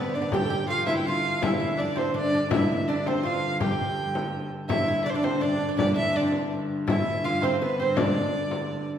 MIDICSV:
0, 0, Header, 1, 6, 480
1, 0, Start_track
1, 0, Tempo, 363196
1, 437, Time_signature, 3, 2, 24, 8
1, 11875, End_track
2, 0, Start_track
2, 0, Title_t, "Fiddle"
2, 0, Program_c, 0, 110
2, 0, Note_on_c, 0, 71, 94
2, 190, Note_on_c, 0, 74, 85
2, 210, Note_off_c, 0, 71, 0
2, 427, Note_on_c, 0, 79, 103
2, 447, Note_off_c, 0, 74, 0
2, 899, Note_off_c, 0, 79, 0
2, 907, Note_on_c, 0, 77, 103
2, 1136, Note_off_c, 0, 77, 0
2, 1150, Note_on_c, 0, 76, 99
2, 1274, Note_off_c, 0, 76, 0
2, 1282, Note_on_c, 0, 79, 72
2, 1399, Note_on_c, 0, 77, 109
2, 1419, Note_off_c, 0, 79, 0
2, 1883, Note_on_c, 0, 76, 90
2, 1902, Note_off_c, 0, 77, 0
2, 2354, Note_on_c, 0, 74, 83
2, 2374, Note_off_c, 0, 76, 0
2, 2612, Note_on_c, 0, 72, 87
2, 2632, Note_off_c, 0, 74, 0
2, 2848, Note_off_c, 0, 72, 0
2, 2855, Note_on_c, 0, 74, 107
2, 3297, Note_off_c, 0, 74, 0
2, 3334, Note_on_c, 0, 76, 90
2, 3807, Note_on_c, 0, 74, 85
2, 3827, Note_off_c, 0, 76, 0
2, 4056, Note_on_c, 0, 72, 86
2, 4076, Note_off_c, 0, 74, 0
2, 4312, Note_on_c, 0, 77, 94
2, 4331, Note_off_c, 0, 72, 0
2, 4772, Note_off_c, 0, 77, 0
2, 4780, Note_on_c, 0, 79, 95
2, 5921, Note_off_c, 0, 79, 0
2, 6193, Note_on_c, 0, 76, 96
2, 6646, Note_off_c, 0, 76, 0
2, 6666, Note_on_c, 0, 74, 87
2, 6731, Note_on_c, 0, 72, 78
2, 6751, Note_off_c, 0, 74, 0
2, 6796, Note_on_c, 0, 74, 97
2, 6816, Note_off_c, 0, 72, 0
2, 6922, Note_on_c, 0, 72, 89
2, 6942, Note_off_c, 0, 74, 0
2, 7152, Note_on_c, 0, 74, 103
2, 7172, Note_off_c, 0, 72, 0
2, 7631, Note_off_c, 0, 74, 0
2, 7639, Note_on_c, 0, 74, 92
2, 7865, Note_off_c, 0, 74, 0
2, 7879, Note_on_c, 0, 76, 105
2, 8141, Note_on_c, 0, 74, 82
2, 8160, Note_off_c, 0, 76, 0
2, 8612, Note_off_c, 0, 74, 0
2, 9086, Note_on_c, 0, 76, 96
2, 9575, Note_on_c, 0, 77, 89
2, 9595, Note_off_c, 0, 76, 0
2, 9817, Note_on_c, 0, 72, 87
2, 9837, Note_off_c, 0, 77, 0
2, 10049, Note_off_c, 0, 72, 0
2, 10061, Note_on_c, 0, 71, 89
2, 10300, Note_on_c, 0, 72, 88
2, 10320, Note_off_c, 0, 71, 0
2, 10528, Note_on_c, 0, 74, 99
2, 10548, Note_off_c, 0, 72, 0
2, 11721, Note_off_c, 0, 74, 0
2, 11875, End_track
3, 0, Start_track
3, 0, Title_t, "Oud"
3, 0, Program_c, 1, 24
3, 121, Note_on_c, 1, 59, 67
3, 271, Note_off_c, 1, 59, 0
3, 287, Note_on_c, 1, 59, 85
3, 447, Note_off_c, 1, 59, 0
3, 456, Note_on_c, 1, 67, 94
3, 593, Note_off_c, 1, 67, 0
3, 599, Note_on_c, 1, 69, 72
3, 657, Note_off_c, 1, 69, 0
3, 663, Note_on_c, 1, 67, 93
3, 888, Note_off_c, 1, 67, 0
3, 893, Note_on_c, 1, 65, 80
3, 1140, Note_off_c, 1, 65, 0
3, 1146, Note_on_c, 1, 64, 96
3, 1401, Note_off_c, 1, 64, 0
3, 1410, Note_on_c, 1, 65, 74
3, 1885, Note_off_c, 1, 65, 0
3, 1890, Note_on_c, 1, 64, 79
3, 2098, Note_off_c, 1, 64, 0
3, 2114, Note_on_c, 1, 64, 83
3, 2335, Note_off_c, 1, 64, 0
3, 2341, Note_on_c, 1, 62, 78
3, 2580, Note_off_c, 1, 62, 0
3, 2585, Note_on_c, 1, 60, 88
3, 2817, Note_off_c, 1, 60, 0
3, 2835, Note_on_c, 1, 62, 75
3, 3087, Note_off_c, 1, 62, 0
3, 3103, Note_on_c, 1, 62, 80
3, 3335, Note_off_c, 1, 62, 0
3, 3340, Note_on_c, 1, 64, 81
3, 3825, Note_off_c, 1, 64, 0
3, 3831, Note_on_c, 1, 62, 77
3, 4062, Note_off_c, 1, 62, 0
3, 4068, Note_on_c, 1, 60, 79
3, 4298, Note_off_c, 1, 60, 0
3, 4303, Note_on_c, 1, 65, 80
3, 4760, Note_off_c, 1, 65, 0
3, 4765, Note_on_c, 1, 67, 76
3, 5913, Note_off_c, 1, 67, 0
3, 6195, Note_on_c, 1, 64, 97
3, 6435, Note_off_c, 1, 64, 0
3, 6451, Note_on_c, 1, 64, 94
3, 6686, Note_off_c, 1, 64, 0
3, 6691, Note_on_c, 1, 62, 83
3, 6796, Note_off_c, 1, 62, 0
3, 6812, Note_on_c, 1, 62, 86
3, 7164, Note_off_c, 1, 62, 0
3, 7180, Note_on_c, 1, 62, 79
3, 7338, Note_off_c, 1, 62, 0
3, 7366, Note_on_c, 1, 62, 67
3, 7500, Note_off_c, 1, 62, 0
3, 7515, Note_on_c, 1, 62, 86
3, 7654, Note_off_c, 1, 62, 0
3, 7669, Note_on_c, 1, 62, 78
3, 8133, Note_off_c, 1, 62, 0
3, 8149, Note_on_c, 1, 62, 70
3, 8584, Note_off_c, 1, 62, 0
3, 9115, Note_on_c, 1, 64, 89
3, 9563, Note_off_c, 1, 64, 0
3, 9568, Note_on_c, 1, 65, 75
3, 9812, Note_off_c, 1, 65, 0
3, 9820, Note_on_c, 1, 60, 89
3, 10058, Note_off_c, 1, 60, 0
3, 10073, Note_on_c, 1, 59, 79
3, 10304, Note_off_c, 1, 59, 0
3, 10332, Note_on_c, 1, 60, 75
3, 10547, Note_off_c, 1, 60, 0
3, 10552, Note_on_c, 1, 62, 78
3, 11680, Note_off_c, 1, 62, 0
3, 11875, End_track
4, 0, Start_track
4, 0, Title_t, "Resonator guitar played with a steel bar"
4, 0, Program_c, 2, 25
4, 0, Note_on_c, 2, 59, 72
4, 186, Note_off_c, 2, 59, 0
4, 205, Note_on_c, 2, 62, 78
4, 437, Note_off_c, 2, 62, 0
4, 442, Note_on_c, 2, 67, 95
4, 925, Note_off_c, 2, 67, 0
4, 930, Note_on_c, 2, 65, 87
4, 1149, Note_off_c, 2, 65, 0
4, 1171, Note_on_c, 2, 64, 94
4, 1390, Note_off_c, 2, 64, 0
4, 1428, Note_on_c, 2, 65, 82
4, 1873, Note_off_c, 2, 65, 0
4, 1878, Note_on_c, 2, 64, 92
4, 2369, Note_off_c, 2, 64, 0
4, 2374, Note_on_c, 2, 62, 80
4, 2812, Note_off_c, 2, 62, 0
4, 2828, Note_on_c, 2, 62, 74
4, 3283, Note_off_c, 2, 62, 0
4, 3311, Note_on_c, 2, 64, 87
4, 3765, Note_off_c, 2, 64, 0
4, 3812, Note_on_c, 2, 62, 87
4, 4056, Note_off_c, 2, 62, 0
4, 4057, Note_on_c, 2, 60, 80
4, 4272, Note_on_c, 2, 65, 77
4, 4275, Note_off_c, 2, 60, 0
4, 4725, Note_off_c, 2, 65, 0
4, 4765, Note_on_c, 2, 67, 77
4, 5913, Note_off_c, 2, 67, 0
4, 6203, Note_on_c, 2, 64, 94
4, 6681, Note_off_c, 2, 64, 0
4, 6687, Note_on_c, 2, 62, 84
4, 6910, Note_off_c, 2, 62, 0
4, 6910, Note_on_c, 2, 60, 86
4, 7141, Note_off_c, 2, 60, 0
4, 7149, Note_on_c, 2, 62, 79
4, 7612, Note_off_c, 2, 62, 0
4, 7628, Note_on_c, 2, 62, 89
4, 7859, Note_off_c, 2, 62, 0
4, 7871, Note_on_c, 2, 64, 89
4, 8096, Note_off_c, 2, 64, 0
4, 8101, Note_on_c, 2, 62, 67
4, 8203, Note_off_c, 2, 62, 0
4, 8206, Note_on_c, 2, 60, 61
4, 8298, Note_on_c, 2, 62, 77
4, 8300, Note_off_c, 2, 60, 0
4, 8580, Note_off_c, 2, 62, 0
4, 9082, Note_on_c, 2, 64, 79
4, 9528, Note_off_c, 2, 64, 0
4, 9574, Note_on_c, 2, 65, 86
4, 9815, Note_off_c, 2, 65, 0
4, 9833, Note_on_c, 2, 60, 88
4, 10042, Note_off_c, 2, 60, 0
4, 10063, Note_on_c, 2, 59, 76
4, 10297, Note_off_c, 2, 59, 0
4, 10302, Note_on_c, 2, 60, 78
4, 10515, Note_off_c, 2, 60, 0
4, 10540, Note_on_c, 2, 62, 87
4, 11674, Note_off_c, 2, 62, 0
4, 11875, End_track
5, 0, Start_track
5, 0, Title_t, "Hurdy-gurdy"
5, 0, Program_c, 3, 110
5, 0, Note_on_c, 3, 43, 76
5, 0, Note_on_c, 3, 50, 71
5, 446, Note_off_c, 3, 50, 0
5, 446, Note_on_c, 3, 50, 79
5, 448, Note_off_c, 3, 43, 0
5, 448, Note_on_c, 3, 43, 74
5, 6192, Note_off_c, 3, 50, 0
5, 6192, Note_on_c, 3, 50, 79
5, 6195, Note_off_c, 3, 43, 0
5, 6195, Note_on_c, 3, 43, 82
5, 11875, Note_off_c, 3, 43, 0
5, 11875, Note_off_c, 3, 50, 0
5, 11875, End_track
6, 0, Start_track
6, 0, Title_t, "Frame drum"
6, 420, Note_on_c, 9, 64, 86
6, 553, Note_off_c, 9, 64, 0
6, 915, Note_on_c, 9, 64, 27
6, 1048, Note_off_c, 9, 64, 0
6, 1145, Note_on_c, 9, 64, 69
6, 1277, Note_off_c, 9, 64, 0
6, 1383, Note_on_c, 9, 64, 27
6, 1516, Note_off_c, 9, 64, 0
6, 1640, Note_on_c, 9, 64, 29
6, 1772, Note_off_c, 9, 64, 0
6, 1882, Note_on_c, 9, 64, 100
6, 2014, Note_off_c, 9, 64, 0
6, 2356, Note_on_c, 9, 64, 33
6, 2488, Note_off_c, 9, 64, 0
6, 2602, Note_on_c, 9, 64, 66
6, 2735, Note_off_c, 9, 64, 0
6, 2844, Note_on_c, 9, 64, 29
6, 2976, Note_off_c, 9, 64, 0
6, 3093, Note_on_c, 9, 64, 28
6, 3226, Note_off_c, 9, 64, 0
6, 3316, Note_on_c, 9, 64, 112
6, 3448, Note_off_c, 9, 64, 0
6, 3808, Note_on_c, 9, 64, 31
6, 3940, Note_off_c, 9, 64, 0
6, 4049, Note_on_c, 9, 64, 72
6, 4181, Note_off_c, 9, 64, 0
6, 4292, Note_on_c, 9, 64, 28
6, 4424, Note_off_c, 9, 64, 0
6, 4536, Note_on_c, 9, 64, 28
6, 4668, Note_off_c, 9, 64, 0
6, 4765, Note_on_c, 9, 64, 85
6, 4897, Note_off_c, 9, 64, 0
6, 5019, Note_on_c, 9, 64, 26
6, 5151, Note_off_c, 9, 64, 0
6, 5488, Note_on_c, 9, 64, 69
6, 5620, Note_off_c, 9, 64, 0
6, 6208, Note_on_c, 9, 64, 92
6, 6340, Note_off_c, 9, 64, 0
6, 6703, Note_on_c, 9, 64, 31
6, 6835, Note_off_c, 9, 64, 0
6, 6927, Note_on_c, 9, 64, 63
6, 7059, Note_off_c, 9, 64, 0
6, 7168, Note_on_c, 9, 64, 26
6, 7300, Note_off_c, 9, 64, 0
6, 7407, Note_on_c, 9, 64, 30
6, 7540, Note_off_c, 9, 64, 0
6, 7648, Note_on_c, 9, 64, 98
6, 7780, Note_off_c, 9, 64, 0
6, 8134, Note_on_c, 9, 64, 30
6, 8266, Note_off_c, 9, 64, 0
6, 8356, Note_on_c, 9, 64, 63
6, 8488, Note_off_c, 9, 64, 0
6, 8600, Note_on_c, 9, 64, 27
6, 8732, Note_off_c, 9, 64, 0
6, 8855, Note_on_c, 9, 64, 27
6, 8987, Note_off_c, 9, 64, 0
6, 9088, Note_on_c, 9, 64, 94
6, 9220, Note_off_c, 9, 64, 0
6, 9576, Note_on_c, 9, 64, 28
6, 9708, Note_off_c, 9, 64, 0
6, 9808, Note_on_c, 9, 64, 71
6, 9940, Note_off_c, 9, 64, 0
6, 10054, Note_on_c, 9, 64, 28
6, 10186, Note_off_c, 9, 64, 0
6, 10290, Note_on_c, 9, 64, 33
6, 10422, Note_off_c, 9, 64, 0
6, 10530, Note_on_c, 9, 64, 109
6, 10663, Note_off_c, 9, 64, 0
6, 10772, Note_on_c, 9, 64, 32
6, 10904, Note_off_c, 9, 64, 0
6, 11251, Note_on_c, 9, 64, 71
6, 11383, Note_off_c, 9, 64, 0
6, 11741, Note_on_c, 9, 64, 29
6, 11873, Note_off_c, 9, 64, 0
6, 11875, End_track
0, 0, End_of_file